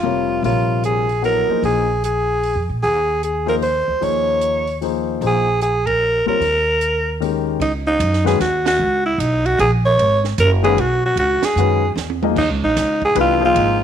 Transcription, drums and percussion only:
0.44 open hi-hat
0.84 closed hi-hat
1.09 open hi-hat
1.24 open hi-hat
1.64 open hi-hat
2.04 closed hi-hat
2.43 open hi-hat
2.84 open hi-hat
3.23 closed hi-hat
3.48 open hi-hat
3.62 open hi-hat
4.02 open hi-hat
4.41 closed hi-hat
4.67 open hi-hat
4.82 open hi-hat
5.22 open hi-hat
5.61 closed hi-hat
5.87 kick, ride
6.42 open hi-hat
6.81 closed hi-hat
7.22 open hi-hat
7.61 ride
8.00 hi-hat pedal, ride
8.13 snare
8.26 snare
8.40 snare, ride
8.66 snare, ride
9.20 hi-hat pedal, ride
9.46 ride
9.59 ride
9.99 ride
10.24 snare
10.38 hi-hat pedal, ride
10.64 ride
10.78 ride
11.17 ride
11.43 snare, ride
11.57 hi-hat pedal
11.97 snare, hi-hat pedal
12.10 high tom
12.23 mid tom
12.36 kick, crash
12.76 snare, hi-hat pedal, ride
13.02 kick
13.15 ride
13.56 ride

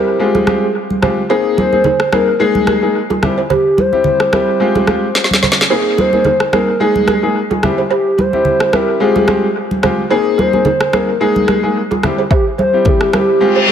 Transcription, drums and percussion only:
0.35 high conga
0.47 cross-stick, high conga
0.90 high conga
1.03 cross-stick, high conga, low conga
1.58 high conga
1.73 high conga
1.84 low conga
2.00 cross-stick
2.13 cross-stick, high conga
2.55 high conga
2.67 cross-stick, high conga
3.10 high conga
3.23 cross-stick, high conga, low conga
3.50 low conga
3.78 high conga
3.93 high conga
4.04 low conga
4.20 cross-stick
4.33 cross-stick, high conga
4.75 high conga
4.87 cross-stick, high conga
5.15 snare
5.24 snare
5.31 snare, high conga
5.43 snare, high conga, low conga
5.52 snare
5.61 snare
5.98 high conga
6.13 high conga
6.25 low conga
6.40 cross-stick
6.53 cross-stick, high conga
6.95 high conga
7.08 cross-stick, high conga
7.51 high conga
7.63 cross-stick, high conga, low conga
8.19 high conga
8.33 high conga
8.45 low conga
8.60 cross-stick
8.73 cross-stick, high conga
9.16 high conga
9.28 cross-stick, high conga
9.71 high conga
9.83 cross-stick, high conga, low conga
10.39 high conga
10.53 high conga
10.65 low conga
10.81 cross-stick
10.93 cross-stick, high conga
11.36 high conga
11.48 cross-stick, high conga
11.91 high conga
12.03 cross-stick, high conga, low conga
12.31 kick
12.59 high conga
12.85 kick, low conga
13.01 cross-stick
13.13 cross-stick, high conga

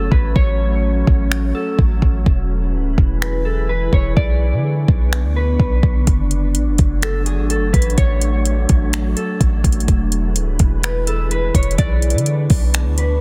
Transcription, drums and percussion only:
0.12 kick
0.36 kick
1.07 kick
1.32 finger snap
1.79 kick
2.02 kick
2.26 kick
2.98 kick
3.22 finger snap
3.93 kick
4.17 kick
4.88 kick
5.13 finger snap
5.60 kick
5.83 kick
6.07 kick, closed hi-hat
6.31 closed hi-hat
6.55 closed hi-hat
6.78 kick, closed hi-hat
7.02 finger snap, closed hi-hat
7.26 closed hi-hat
7.50 closed hi-hat
7.74 kick, closed hi-hat
7.82 closed hi-hat
7.90 closed hi-hat
7.98 kick, closed hi-hat
8.22 closed hi-hat
8.46 closed hi-hat
8.69 kick, closed hi-hat
8.93 finger snap, closed hi-hat
9.17 closed hi-hat
9.41 kick, closed hi-hat
9.64 kick, closed hi-hat
9.72 closed hi-hat
9.80 closed hi-hat
9.88 kick, closed hi-hat
10.12 closed hi-hat
10.36 closed hi-hat
10.59 kick, closed hi-hat
10.83 finger snap, closed hi-hat
11.07 closed hi-hat
11.31 closed hi-hat
11.55 kick, closed hi-hat
11.63 closed hi-hat
11.71 closed hi-hat
11.78 kick, closed hi-hat
12.02 closed hi-hat
12.10 closed hi-hat
12.18 closed hi-hat
12.26 closed hi-hat
12.50 kick, open hi-hat
12.74 finger snap, closed hi-hat
12.98 closed hi-hat

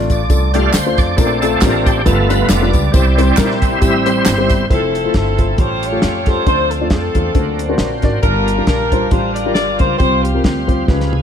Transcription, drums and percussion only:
0.10 kick, closed hi-hat, tambourine
0.30 kick, closed hi-hat, tambourine
0.54 closed hi-hat, tambourine
0.74 snare, clap, closed hi-hat, tambourine
0.98 kick, snare, closed hi-hat, tambourine
1.18 kick, closed hi-hat, tambourine
1.42 closed hi-hat, tambourine
1.61 kick, snare, clap, closed hi-hat, tambourine
1.86 kick, closed hi-hat, tambourine
2.06 kick, closed hi-hat, tambourine
2.30 closed hi-hat, tambourine
2.49 snare, clap, closed hi-hat, tambourine
2.73 kick, closed hi-hat, tambourine
2.94 kick, closed hi-hat, tambourine
3.18 closed hi-hat, tambourine
3.37 kick, snare, clap, closed hi-hat, tambourine
3.51 snare
3.62 kick, closed hi-hat, tambourine
3.82 kick, closed hi-hat, tambourine
4.06 closed hi-hat, tambourine
4.26 snare, clap, closed hi-hat, tambourine
4.49 kick, snare, closed hi-hat, tambourine
4.70 kick, closed hi-hat
4.95 closed hi-hat
5.14 kick, snare, closed hi-hat
5.39 kick, closed hi-hat
5.58 kick, closed hi-hat
5.83 closed hi-hat
6.02 snare, closed hi-hat
6.26 kick, snare, closed hi-hat
6.47 kick, closed hi-hat
6.71 closed hi-hat
6.90 kick, snare, closed hi-hat
7.15 kick, closed hi-hat
7.35 kick, closed hi-hat
7.59 closed hi-hat
7.78 snare, closed hi-hat
8.02 kick, snare, closed hi-hat
8.23 kick, closed hi-hat
8.48 closed hi-hat
8.67 kick, snare, closed hi-hat
8.92 kick, closed hi-hat
9.11 kick, closed hi-hat
9.36 closed hi-hat
9.55 snare, closed hi-hat
9.79 kick, closed hi-hat
10.00 kick, closed hi-hat
10.25 closed hi-hat
10.44 kick, snare, closed hi-hat
10.69 kick, closed hi-hat
10.88 kick, snare
11.01 snare
11.13 high tom

